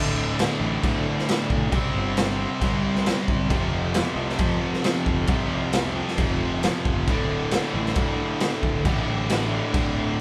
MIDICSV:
0, 0, Header, 1, 5, 480
1, 0, Start_track
1, 0, Tempo, 446097
1, 1859, Time_signature, 4, 2, 24, 8
1, 10982, End_track
2, 0, Start_track
2, 0, Title_t, "Distorted electric guitar"
2, 0, Program_c, 0, 30
2, 0, Note_on_c, 0, 38, 93
2, 0, Note_on_c, 0, 45, 96
2, 0, Note_on_c, 0, 50, 98
2, 864, Note_off_c, 0, 38, 0
2, 877, Note_on_c, 0, 38, 81
2, 882, Note_off_c, 0, 45, 0
2, 892, Note_off_c, 0, 50, 0
2, 895, Note_on_c, 0, 45, 77
2, 905, Note_on_c, 0, 50, 86
2, 1828, Note_off_c, 0, 38, 0
2, 1832, Note_on_c, 0, 48, 98
2, 1844, Note_off_c, 0, 45, 0
2, 1849, Note_off_c, 0, 50, 0
2, 1851, Note_on_c, 0, 55, 91
2, 1858, Note_on_c, 0, 60, 102
2, 2791, Note_off_c, 0, 48, 0
2, 2800, Note_off_c, 0, 55, 0
2, 2810, Note_on_c, 0, 48, 73
2, 2821, Note_on_c, 0, 55, 87
2, 2823, Note_off_c, 0, 60, 0
2, 2827, Note_on_c, 0, 60, 92
2, 3747, Note_off_c, 0, 48, 0
2, 3751, Note_on_c, 0, 41, 97
2, 3764, Note_off_c, 0, 55, 0
2, 3769, Note_on_c, 0, 48, 94
2, 3778, Note_off_c, 0, 60, 0
2, 3782, Note_on_c, 0, 53, 99
2, 4717, Note_off_c, 0, 48, 0
2, 4723, Note_off_c, 0, 41, 0
2, 4727, Note_on_c, 0, 41, 80
2, 4738, Note_on_c, 0, 48, 85
2, 4756, Note_off_c, 0, 53, 0
2, 4760, Note_on_c, 0, 53, 81
2, 5660, Note_off_c, 0, 41, 0
2, 5673, Note_on_c, 0, 41, 95
2, 5677, Note_off_c, 0, 48, 0
2, 5690, Note_on_c, 0, 48, 101
2, 5692, Note_off_c, 0, 53, 0
2, 5705, Note_on_c, 0, 53, 98
2, 6626, Note_off_c, 0, 41, 0
2, 6637, Note_off_c, 0, 48, 0
2, 6639, Note_on_c, 0, 41, 69
2, 6645, Note_off_c, 0, 53, 0
2, 6658, Note_on_c, 0, 48, 86
2, 6664, Note_on_c, 0, 53, 89
2, 7589, Note_off_c, 0, 41, 0
2, 7594, Note_on_c, 0, 38, 87
2, 7601, Note_off_c, 0, 48, 0
2, 7604, Note_off_c, 0, 53, 0
2, 7612, Note_on_c, 0, 45, 89
2, 7619, Note_on_c, 0, 50, 100
2, 8557, Note_off_c, 0, 45, 0
2, 8560, Note_off_c, 0, 38, 0
2, 8564, Note_on_c, 0, 38, 67
2, 8582, Note_on_c, 0, 45, 76
2, 8593, Note_off_c, 0, 50, 0
2, 8597, Note_on_c, 0, 50, 77
2, 9499, Note_off_c, 0, 38, 0
2, 9512, Note_on_c, 0, 38, 93
2, 9515, Note_off_c, 0, 45, 0
2, 9528, Note_on_c, 0, 45, 94
2, 9530, Note_off_c, 0, 50, 0
2, 9545, Note_on_c, 0, 50, 103
2, 10454, Note_off_c, 0, 38, 0
2, 10466, Note_off_c, 0, 45, 0
2, 10467, Note_on_c, 0, 38, 79
2, 10479, Note_on_c, 0, 45, 81
2, 10483, Note_off_c, 0, 50, 0
2, 10497, Note_on_c, 0, 50, 86
2, 10982, Note_off_c, 0, 38, 0
2, 10982, Note_off_c, 0, 45, 0
2, 10982, Note_off_c, 0, 50, 0
2, 10982, End_track
3, 0, Start_track
3, 0, Title_t, "Distorted electric guitar"
3, 0, Program_c, 1, 30
3, 647, Note_on_c, 1, 50, 87
3, 664, Note_on_c, 1, 45, 76
3, 680, Note_on_c, 1, 38, 77
3, 1840, Note_off_c, 1, 50, 0
3, 1847, Note_off_c, 1, 38, 0
3, 1848, Note_off_c, 1, 45, 0
3, 2568, Note_on_c, 1, 60, 86
3, 2585, Note_on_c, 1, 55, 70
3, 2600, Note_on_c, 1, 48, 70
3, 3757, Note_off_c, 1, 48, 0
3, 3766, Note_off_c, 1, 55, 0
3, 3792, Note_off_c, 1, 60, 0
3, 4487, Note_on_c, 1, 53, 86
3, 4506, Note_on_c, 1, 48, 70
3, 4520, Note_on_c, 1, 41, 80
3, 5673, Note_off_c, 1, 41, 0
3, 5676, Note_off_c, 1, 53, 0
3, 5685, Note_off_c, 1, 48, 0
3, 6406, Note_on_c, 1, 53, 81
3, 6427, Note_on_c, 1, 48, 72
3, 6440, Note_on_c, 1, 41, 67
3, 7595, Note_off_c, 1, 53, 0
3, 7601, Note_off_c, 1, 41, 0
3, 7605, Note_off_c, 1, 48, 0
3, 8322, Note_on_c, 1, 50, 79
3, 8337, Note_on_c, 1, 45, 83
3, 8348, Note_on_c, 1, 38, 69
3, 9512, Note_off_c, 1, 38, 0
3, 9512, Note_off_c, 1, 50, 0
3, 9520, Note_off_c, 1, 45, 0
3, 10229, Note_on_c, 1, 50, 81
3, 10247, Note_on_c, 1, 45, 88
3, 10258, Note_on_c, 1, 38, 77
3, 10982, Note_off_c, 1, 38, 0
3, 10982, Note_off_c, 1, 45, 0
3, 10982, Note_off_c, 1, 50, 0
3, 10982, End_track
4, 0, Start_track
4, 0, Title_t, "Picked electric bass"
4, 0, Program_c, 2, 34
4, 0, Note_on_c, 2, 26, 90
4, 480, Note_off_c, 2, 26, 0
4, 642, Note_on_c, 2, 33, 102
4, 830, Note_off_c, 2, 33, 0
4, 896, Note_on_c, 2, 38, 104
4, 1079, Note_off_c, 2, 38, 0
4, 1616, Note_on_c, 2, 35, 94
4, 1799, Note_off_c, 2, 35, 0
4, 1855, Note_on_c, 2, 36, 96
4, 2038, Note_off_c, 2, 36, 0
4, 2090, Note_on_c, 2, 31, 94
4, 2637, Note_off_c, 2, 31, 0
4, 2805, Note_on_c, 2, 36, 104
4, 3354, Note_off_c, 2, 36, 0
4, 3528, Note_on_c, 2, 36, 85
4, 3761, Note_on_c, 2, 29, 94
4, 3777, Note_off_c, 2, 36, 0
4, 4311, Note_off_c, 2, 29, 0
4, 4472, Note_on_c, 2, 36, 107
4, 4663, Note_off_c, 2, 36, 0
4, 4723, Note_on_c, 2, 41, 105
4, 4909, Note_off_c, 2, 41, 0
4, 5450, Note_on_c, 2, 29, 104
4, 5633, Note_off_c, 2, 29, 0
4, 5685, Note_on_c, 2, 36, 104
4, 5870, Note_off_c, 2, 36, 0
4, 5928, Note_on_c, 2, 36, 100
4, 6474, Note_off_c, 2, 36, 0
4, 6645, Note_on_c, 2, 29, 103
4, 7192, Note_off_c, 2, 29, 0
4, 7374, Note_on_c, 2, 29, 93
4, 7611, Note_off_c, 2, 29, 0
4, 7611, Note_on_c, 2, 26, 98
4, 8156, Note_off_c, 2, 26, 0
4, 8327, Note_on_c, 2, 33, 104
4, 8510, Note_off_c, 2, 33, 0
4, 8564, Note_on_c, 2, 38, 104
4, 8748, Note_off_c, 2, 38, 0
4, 9279, Note_on_c, 2, 26, 99
4, 9466, Note_off_c, 2, 26, 0
4, 9517, Note_on_c, 2, 33, 103
4, 9704, Note_off_c, 2, 33, 0
4, 9776, Note_on_c, 2, 33, 98
4, 10318, Note_off_c, 2, 33, 0
4, 10475, Note_on_c, 2, 26, 106
4, 10982, Note_off_c, 2, 26, 0
4, 10982, End_track
5, 0, Start_track
5, 0, Title_t, "Drums"
5, 421, Note_on_c, 9, 49, 71
5, 430, Note_on_c, 9, 38, 119
5, 528, Note_off_c, 9, 49, 0
5, 538, Note_off_c, 9, 38, 0
5, 899, Note_on_c, 9, 36, 106
5, 902, Note_on_c, 9, 49, 65
5, 1006, Note_off_c, 9, 36, 0
5, 1010, Note_off_c, 9, 49, 0
5, 1278, Note_on_c, 9, 38, 34
5, 1384, Note_on_c, 9, 49, 67
5, 1386, Note_off_c, 9, 38, 0
5, 1394, Note_on_c, 9, 38, 122
5, 1492, Note_off_c, 9, 49, 0
5, 1502, Note_off_c, 9, 38, 0
5, 1616, Note_on_c, 9, 36, 92
5, 1723, Note_off_c, 9, 36, 0
5, 1855, Note_on_c, 9, 36, 112
5, 1855, Note_on_c, 9, 49, 69
5, 1962, Note_off_c, 9, 36, 0
5, 1962, Note_off_c, 9, 49, 0
5, 2334, Note_on_c, 9, 49, 68
5, 2344, Note_on_c, 9, 38, 118
5, 2442, Note_off_c, 9, 49, 0
5, 2451, Note_off_c, 9, 38, 0
5, 2814, Note_on_c, 9, 36, 109
5, 2817, Note_on_c, 9, 49, 62
5, 2922, Note_off_c, 9, 36, 0
5, 2924, Note_off_c, 9, 49, 0
5, 3178, Note_on_c, 9, 38, 32
5, 3286, Note_off_c, 9, 38, 0
5, 3294, Note_on_c, 9, 49, 64
5, 3304, Note_on_c, 9, 38, 113
5, 3402, Note_off_c, 9, 49, 0
5, 3412, Note_off_c, 9, 38, 0
5, 3532, Note_on_c, 9, 36, 94
5, 3639, Note_off_c, 9, 36, 0
5, 3770, Note_on_c, 9, 36, 109
5, 3771, Note_on_c, 9, 49, 59
5, 3878, Note_off_c, 9, 36, 0
5, 3879, Note_off_c, 9, 49, 0
5, 4242, Note_on_c, 9, 49, 64
5, 4251, Note_on_c, 9, 38, 120
5, 4349, Note_off_c, 9, 49, 0
5, 4359, Note_off_c, 9, 38, 0
5, 4620, Note_on_c, 9, 38, 36
5, 4719, Note_on_c, 9, 49, 66
5, 4727, Note_on_c, 9, 36, 121
5, 4728, Note_off_c, 9, 38, 0
5, 4827, Note_off_c, 9, 49, 0
5, 4835, Note_off_c, 9, 36, 0
5, 5096, Note_on_c, 9, 38, 31
5, 5204, Note_off_c, 9, 38, 0
5, 5209, Note_on_c, 9, 49, 69
5, 5218, Note_on_c, 9, 38, 112
5, 5316, Note_off_c, 9, 49, 0
5, 5326, Note_off_c, 9, 38, 0
5, 5447, Note_on_c, 9, 36, 89
5, 5555, Note_off_c, 9, 36, 0
5, 5675, Note_on_c, 9, 49, 69
5, 5686, Note_on_c, 9, 36, 112
5, 5783, Note_off_c, 9, 49, 0
5, 5793, Note_off_c, 9, 36, 0
5, 6162, Note_on_c, 9, 49, 67
5, 6172, Note_on_c, 9, 38, 120
5, 6270, Note_off_c, 9, 49, 0
5, 6279, Note_off_c, 9, 38, 0
5, 6543, Note_on_c, 9, 38, 35
5, 6647, Note_on_c, 9, 49, 63
5, 6650, Note_off_c, 9, 38, 0
5, 6653, Note_on_c, 9, 36, 112
5, 6755, Note_off_c, 9, 49, 0
5, 6761, Note_off_c, 9, 36, 0
5, 7133, Note_on_c, 9, 49, 62
5, 7143, Note_on_c, 9, 38, 117
5, 7241, Note_off_c, 9, 49, 0
5, 7251, Note_off_c, 9, 38, 0
5, 7375, Note_on_c, 9, 36, 95
5, 7482, Note_off_c, 9, 36, 0
5, 7612, Note_on_c, 9, 49, 62
5, 7615, Note_on_c, 9, 36, 108
5, 7720, Note_off_c, 9, 49, 0
5, 7722, Note_off_c, 9, 36, 0
5, 8085, Note_on_c, 9, 49, 67
5, 8094, Note_on_c, 9, 38, 114
5, 8192, Note_off_c, 9, 49, 0
5, 8202, Note_off_c, 9, 38, 0
5, 8458, Note_on_c, 9, 38, 35
5, 8559, Note_on_c, 9, 49, 65
5, 8565, Note_off_c, 9, 38, 0
5, 8567, Note_on_c, 9, 36, 111
5, 8667, Note_off_c, 9, 49, 0
5, 8675, Note_off_c, 9, 36, 0
5, 9042, Note_on_c, 9, 49, 60
5, 9052, Note_on_c, 9, 38, 113
5, 9150, Note_off_c, 9, 49, 0
5, 9159, Note_off_c, 9, 38, 0
5, 9285, Note_on_c, 9, 36, 90
5, 9393, Note_off_c, 9, 36, 0
5, 9524, Note_on_c, 9, 36, 115
5, 9525, Note_on_c, 9, 49, 67
5, 9632, Note_off_c, 9, 36, 0
5, 9633, Note_off_c, 9, 49, 0
5, 10002, Note_on_c, 9, 49, 72
5, 10012, Note_on_c, 9, 38, 109
5, 10110, Note_off_c, 9, 49, 0
5, 10120, Note_off_c, 9, 38, 0
5, 10482, Note_on_c, 9, 36, 115
5, 10483, Note_on_c, 9, 49, 67
5, 10590, Note_off_c, 9, 36, 0
5, 10590, Note_off_c, 9, 49, 0
5, 10982, End_track
0, 0, End_of_file